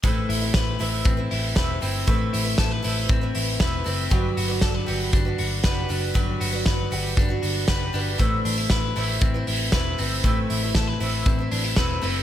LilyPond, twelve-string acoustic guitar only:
\new Staff \with { instrumentName = "Twelve-string acoustic guitar" } { \time 4/4 \key a \dorian \tempo 4 = 118 <a c' e' b'>8. <c' e' b'>8. <a c' e' b'>8. <c' e' b'>8. <a c' e' b'>8 <a c' e' b'>8 | <a c' e' b'>8. <c' e' b'>8. <a c' e' b'>8. <c' e' b'>8. <a c' e' b'>8 <a c' e' b'>8 | <g d' fis' b'>8. <d' fis' b'>8. <g d' fis' b'>8. <d' fis' b'>8. <g d' fis' b'>8 <g d' fis' b'>8 | <g d' fis' b'>8. <d' fis' b'>8. <g d' fis' b'>8. <d' fis' b'>8. <g d' fis' b'>8 <g d' fis' b'>8 |
<a c' e' b'>8. <c' e' b'>8. <a c' e' b'>8. <c' e' b'>8. <a c' e' b'>8 <a c' e' b'>8 | <a c' e' b'>8. <c' e' b'>8. <a c' e' b'>8. <c' e' b'>8. <a c' e' b'>8 <a c' e' b'>8 | }